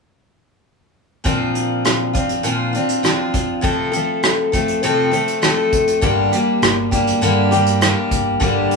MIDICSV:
0, 0, Header, 1, 4, 480
1, 0, Start_track
1, 0, Tempo, 596421
1, 1006, Time_signature, 4, 2, 24, 8
1, 7050, End_track
2, 0, Start_track
2, 0, Title_t, "Steel-string acoustic guitar"
2, 0, Program_c, 0, 25
2, 997, Note_on_c, 0, 46, 65
2, 1001, Note_on_c, 0, 53, 72
2, 1007, Note_on_c, 0, 60, 67
2, 1012, Note_on_c, 0, 62, 68
2, 1014, Note_on_c, 0, 65, 64
2, 1715, Note_off_c, 0, 65, 0
2, 1718, Note_on_c, 0, 65, 46
2, 1719, Note_off_c, 0, 62, 0
2, 1722, Note_off_c, 0, 46, 0
2, 1728, Note_on_c, 0, 62, 39
2, 1740, Note_off_c, 0, 60, 0
2, 1743, Note_on_c, 0, 60, 38
2, 1958, Note_on_c, 0, 46, 75
2, 1961, Note_off_c, 0, 60, 0
2, 1963, Note_off_c, 0, 65, 0
2, 1965, Note_off_c, 0, 53, 0
2, 1966, Note_off_c, 0, 62, 0
2, 1968, Note_on_c, 0, 53, 76
2, 1970, Note_on_c, 0, 60, 66
2, 1975, Note_on_c, 0, 62, 71
2, 1984, Note_on_c, 0, 65, 77
2, 2186, Note_off_c, 0, 65, 0
2, 2195, Note_on_c, 0, 65, 47
2, 2202, Note_off_c, 0, 62, 0
2, 2203, Note_off_c, 0, 46, 0
2, 2208, Note_off_c, 0, 53, 0
2, 2209, Note_off_c, 0, 60, 0
2, 2212, Note_on_c, 0, 62, 43
2, 2223, Note_on_c, 0, 60, 36
2, 2435, Note_off_c, 0, 60, 0
2, 2439, Note_on_c, 0, 53, 52
2, 2442, Note_off_c, 0, 65, 0
2, 2445, Note_on_c, 0, 60, 57
2, 2450, Note_off_c, 0, 62, 0
2, 2460, Note_on_c, 0, 62, 64
2, 2469, Note_on_c, 0, 65, 60
2, 2906, Note_off_c, 0, 53, 0
2, 2908, Note_on_c, 0, 41, 66
2, 2915, Note_on_c, 0, 48, 68
2, 2916, Note_on_c, 0, 53, 76
2, 2917, Note_off_c, 0, 60, 0
2, 2923, Note_off_c, 0, 62, 0
2, 2924, Note_off_c, 0, 65, 0
2, 2926, Note_on_c, 0, 57, 64
2, 2926, Note_on_c, 0, 60, 69
2, 2928, Note_on_c, 0, 69, 72
2, 3143, Note_off_c, 0, 69, 0
2, 3153, Note_on_c, 0, 69, 49
2, 3155, Note_off_c, 0, 60, 0
2, 3158, Note_off_c, 0, 41, 0
2, 3159, Note_off_c, 0, 57, 0
2, 3162, Note_off_c, 0, 48, 0
2, 3162, Note_off_c, 0, 53, 0
2, 3165, Note_on_c, 0, 60, 41
2, 3168, Note_on_c, 0, 57, 40
2, 3179, Note_on_c, 0, 53, 39
2, 3629, Note_off_c, 0, 69, 0
2, 3638, Note_off_c, 0, 60, 0
2, 3638, Note_on_c, 0, 69, 49
2, 3646, Note_off_c, 0, 57, 0
2, 3648, Note_on_c, 0, 60, 49
2, 3654, Note_off_c, 0, 53, 0
2, 3655, Note_on_c, 0, 57, 40
2, 3663, Note_on_c, 0, 53, 37
2, 3881, Note_off_c, 0, 57, 0
2, 3884, Note_off_c, 0, 69, 0
2, 3885, Note_off_c, 0, 53, 0
2, 3885, Note_on_c, 0, 41, 71
2, 3886, Note_on_c, 0, 48, 70
2, 3888, Note_off_c, 0, 60, 0
2, 3891, Note_on_c, 0, 57, 80
2, 3894, Note_on_c, 0, 53, 80
2, 3899, Note_on_c, 0, 60, 78
2, 3901, Note_on_c, 0, 69, 79
2, 4106, Note_off_c, 0, 69, 0
2, 4115, Note_off_c, 0, 60, 0
2, 4116, Note_on_c, 0, 69, 49
2, 4124, Note_off_c, 0, 57, 0
2, 4125, Note_on_c, 0, 60, 45
2, 4127, Note_off_c, 0, 41, 0
2, 4127, Note_off_c, 0, 48, 0
2, 4129, Note_off_c, 0, 53, 0
2, 4134, Note_on_c, 0, 57, 48
2, 4139, Note_on_c, 0, 53, 42
2, 4349, Note_off_c, 0, 53, 0
2, 4356, Note_off_c, 0, 57, 0
2, 4359, Note_on_c, 0, 53, 56
2, 4362, Note_off_c, 0, 60, 0
2, 4363, Note_off_c, 0, 69, 0
2, 4365, Note_on_c, 0, 57, 66
2, 4372, Note_on_c, 0, 60, 67
2, 4381, Note_on_c, 0, 69, 68
2, 4840, Note_on_c, 0, 43, 64
2, 4842, Note_off_c, 0, 53, 0
2, 4844, Note_on_c, 0, 50, 64
2, 4845, Note_on_c, 0, 55, 75
2, 4847, Note_off_c, 0, 57, 0
2, 4848, Note_off_c, 0, 60, 0
2, 4850, Note_on_c, 0, 58, 63
2, 4851, Note_on_c, 0, 62, 68
2, 4854, Note_off_c, 0, 69, 0
2, 4857, Note_on_c, 0, 67, 71
2, 5075, Note_off_c, 0, 67, 0
2, 5084, Note_off_c, 0, 43, 0
2, 5085, Note_on_c, 0, 67, 43
2, 5086, Note_off_c, 0, 50, 0
2, 5087, Note_off_c, 0, 55, 0
2, 5089, Note_off_c, 0, 58, 0
2, 5090, Note_off_c, 0, 62, 0
2, 5101, Note_on_c, 0, 62, 43
2, 5111, Note_on_c, 0, 58, 42
2, 5114, Note_on_c, 0, 55, 43
2, 5553, Note_off_c, 0, 67, 0
2, 5563, Note_on_c, 0, 67, 47
2, 5575, Note_off_c, 0, 62, 0
2, 5578, Note_on_c, 0, 62, 44
2, 5581, Note_off_c, 0, 55, 0
2, 5582, Note_off_c, 0, 58, 0
2, 5586, Note_on_c, 0, 58, 44
2, 5595, Note_on_c, 0, 55, 39
2, 5805, Note_off_c, 0, 67, 0
2, 5805, Note_on_c, 0, 43, 70
2, 5807, Note_off_c, 0, 55, 0
2, 5809, Note_off_c, 0, 58, 0
2, 5810, Note_off_c, 0, 62, 0
2, 5810, Note_on_c, 0, 50, 75
2, 5817, Note_on_c, 0, 55, 74
2, 5819, Note_on_c, 0, 58, 85
2, 5819, Note_on_c, 0, 62, 80
2, 5824, Note_on_c, 0, 67, 82
2, 6034, Note_off_c, 0, 67, 0
2, 6043, Note_off_c, 0, 62, 0
2, 6044, Note_on_c, 0, 67, 51
2, 6046, Note_off_c, 0, 43, 0
2, 6049, Note_off_c, 0, 50, 0
2, 6051, Note_off_c, 0, 58, 0
2, 6052, Note_off_c, 0, 55, 0
2, 6053, Note_on_c, 0, 62, 46
2, 6061, Note_on_c, 0, 58, 45
2, 6070, Note_on_c, 0, 55, 46
2, 6276, Note_off_c, 0, 55, 0
2, 6286, Note_off_c, 0, 67, 0
2, 6286, Note_on_c, 0, 55, 60
2, 6287, Note_off_c, 0, 58, 0
2, 6290, Note_off_c, 0, 62, 0
2, 6297, Note_on_c, 0, 58, 62
2, 6306, Note_on_c, 0, 62, 60
2, 6312, Note_on_c, 0, 67, 67
2, 6758, Note_off_c, 0, 55, 0
2, 6758, Note_on_c, 0, 43, 76
2, 6761, Note_on_c, 0, 50, 68
2, 6767, Note_on_c, 0, 55, 68
2, 6770, Note_off_c, 0, 58, 0
2, 6771, Note_off_c, 0, 67, 0
2, 6772, Note_off_c, 0, 62, 0
2, 6774, Note_on_c, 0, 58, 68
2, 6775, Note_on_c, 0, 62, 78
2, 6781, Note_on_c, 0, 67, 75
2, 7050, Note_off_c, 0, 43, 0
2, 7050, Note_off_c, 0, 50, 0
2, 7050, Note_off_c, 0, 55, 0
2, 7050, Note_off_c, 0, 58, 0
2, 7050, Note_off_c, 0, 62, 0
2, 7050, Note_off_c, 0, 67, 0
2, 7050, End_track
3, 0, Start_track
3, 0, Title_t, "Fingered electric bass"
3, 0, Program_c, 1, 33
3, 4851, Note_on_c, 1, 31, 83
3, 5042, Note_off_c, 1, 31, 0
3, 5328, Note_on_c, 1, 31, 78
3, 5713, Note_off_c, 1, 31, 0
3, 5807, Note_on_c, 1, 43, 73
3, 6385, Note_off_c, 1, 43, 0
3, 6527, Note_on_c, 1, 31, 76
3, 6720, Note_off_c, 1, 31, 0
3, 6770, Note_on_c, 1, 31, 82
3, 6961, Note_off_c, 1, 31, 0
3, 7050, End_track
4, 0, Start_track
4, 0, Title_t, "Drums"
4, 1008, Note_on_c, 9, 36, 86
4, 1012, Note_on_c, 9, 42, 52
4, 1089, Note_off_c, 9, 36, 0
4, 1093, Note_off_c, 9, 42, 0
4, 1249, Note_on_c, 9, 42, 49
4, 1330, Note_off_c, 9, 42, 0
4, 1487, Note_on_c, 9, 42, 57
4, 1493, Note_on_c, 9, 37, 92
4, 1567, Note_off_c, 9, 42, 0
4, 1574, Note_off_c, 9, 37, 0
4, 1728, Note_on_c, 9, 42, 53
4, 1729, Note_on_c, 9, 36, 72
4, 1808, Note_off_c, 9, 42, 0
4, 1809, Note_off_c, 9, 36, 0
4, 1846, Note_on_c, 9, 42, 48
4, 1927, Note_off_c, 9, 42, 0
4, 1965, Note_on_c, 9, 42, 50
4, 2045, Note_off_c, 9, 42, 0
4, 2209, Note_on_c, 9, 42, 53
4, 2290, Note_off_c, 9, 42, 0
4, 2325, Note_on_c, 9, 42, 57
4, 2406, Note_off_c, 9, 42, 0
4, 2446, Note_on_c, 9, 42, 51
4, 2453, Note_on_c, 9, 37, 80
4, 2527, Note_off_c, 9, 42, 0
4, 2533, Note_off_c, 9, 37, 0
4, 2686, Note_on_c, 9, 42, 51
4, 2689, Note_on_c, 9, 36, 76
4, 2767, Note_off_c, 9, 42, 0
4, 2769, Note_off_c, 9, 36, 0
4, 2924, Note_on_c, 9, 42, 49
4, 2928, Note_on_c, 9, 36, 85
4, 3004, Note_off_c, 9, 42, 0
4, 3008, Note_off_c, 9, 36, 0
4, 3165, Note_on_c, 9, 42, 51
4, 3246, Note_off_c, 9, 42, 0
4, 3404, Note_on_c, 9, 42, 52
4, 3410, Note_on_c, 9, 37, 99
4, 3484, Note_off_c, 9, 42, 0
4, 3491, Note_off_c, 9, 37, 0
4, 3648, Note_on_c, 9, 42, 51
4, 3650, Note_on_c, 9, 36, 69
4, 3728, Note_off_c, 9, 42, 0
4, 3730, Note_off_c, 9, 36, 0
4, 3768, Note_on_c, 9, 42, 45
4, 3849, Note_off_c, 9, 42, 0
4, 3886, Note_on_c, 9, 42, 53
4, 3967, Note_off_c, 9, 42, 0
4, 4128, Note_on_c, 9, 42, 49
4, 4209, Note_off_c, 9, 42, 0
4, 4249, Note_on_c, 9, 42, 49
4, 4329, Note_off_c, 9, 42, 0
4, 4363, Note_on_c, 9, 42, 45
4, 4370, Note_on_c, 9, 37, 86
4, 4444, Note_off_c, 9, 42, 0
4, 4450, Note_off_c, 9, 37, 0
4, 4609, Note_on_c, 9, 36, 71
4, 4609, Note_on_c, 9, 42, 56
4, 4689, Note_off_c, 9, 36, 0
4, 4689, Note_off_c, 9, 42, 0
4, 4729, Note_on_c, 9, 42, 51
4, 4810, Note_off_c, 9, 42, 0
4, 4845, Note_on_c, 9, 42, 51
4, 4849, Note_on_c, 9, 36, 84
4, 4926, Note_off_c, 9, 42, 0
4, 4929, Note_off_c, 9, 36, 0
4, 5092, Note_on_c, 9, 42, 54
4, 5173, Note_off_c, 9, 42, 0
4, 5330, Note_on_c, 9, 42, 56
4, 5336, Note_on_c, 9, 37, 105
4, 5411, Note_off_c, 9, 42, 0
4, 5417, Note_off_c, 9, 37, 0
4, 5570, Note_on_c, 9, 36, 70
4, 5570, Note_on_c, 9, 42, 52
4, 5651, Note_off_c, 9, 36, 0
4, 5651, Note_off_c, 9, 42, 0
4, 5693, Note_on_c, 9, 42, 50
4, 5773, Note_off_c, 9, 42, 0
4, 5810, Note_on_c, 9, 42, 51
4, 5891, Note_off_c, 9, 42, 0
4, 6052, Note_on_c, 9, 42, 58
4, 6132, Note_off_c, 9, 42, 0
4, 6170, Note_on_c, 9, 42, 55
4, 6250, Note_off_c, 9, 42, 0
4, 6289, Note_on_c, 9, 42, 55
4, 6296, Note_on_c, 9, 37, 95
4, 6370, Note_off_c, 9, 42, 0
4, 6376, Note_off_c, 9, 37, 0
4, 6529, Note_on_c, 9, 42, 59
4, 6530, Note_on_c, 9, 36, 75
4, 6610, Note_off_c, 9, 36, 0
4, 6610, Note_off_c, 9, 42, 0
4, 6770, Note_on_c, 9, 36, 88
4, 6772, Note_on_c, 9, 42, 53
4, 6851, Note_off_c, 9, 36, 0
4, 6853, Note_off_c, 9, 42, 0
4, 7012, Note_on_c, 9, 42, 52
4, 7050, Note_off_c, 9, 42, 0
4, 7050, End_track
0, 0, End_of_file